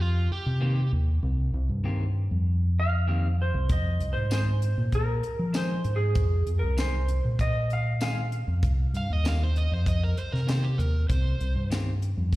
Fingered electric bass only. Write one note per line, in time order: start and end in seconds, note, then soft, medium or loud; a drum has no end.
0.00 0.26 F2 medium
0.30 muted fingered electric bass stroke soft
0.46 0.88 C3 medium
0.92 1.21 D#2 medium
1.23 1.51 C2 loud
1.54 1.68 C2 medium
1.69 2.27 G2 medium
2.31 3.51 F2 medium
3.54 3.68 C2 medium
3.70 3.98 F2 medium
3.99 4.14 C2 medium
4.16 4.74 G#2 medium
4.78 5.20 A#2 medium
5.23 muted fingered electric bass stroke soft
5.39 5.81 F3 medium
5.85 6.13 G#2 medium
6.16 6.44 F2 medium
6.46 6.61 F2 medium
6.62 7.20 C2 medium
7.25 8.44 A#2 medium
8.48 8.61 F2 medium
8.63 8.91 C2 medium
8.93 9.08 G2 medium
9.10 9.67 D#2 medium
9.71 10.13 F2 medium
10.17 muted fingered electric bass stroke soft
10.33 10.75 C3 medium
10.78 11.07 D#2 medium
11.10 11.38 C2 loud
11.40 11.54 C2 medium
11.55 12.13 G2 medium
12.17 12.36 F2 medium